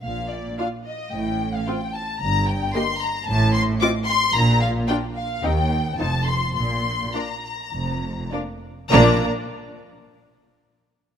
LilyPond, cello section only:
\new Staff \with { instrumentName = "Cello section" } { \clef bass \time 4/4 \key bes \major \tempo 4 = 109 bes,4 r4 a,4 r4 | g,4 r4 a,4 r4 | bes,4 r4 ees,4 f,4 | bes,4 r4 f,4 r4 |
bes,8 r2. r8 | }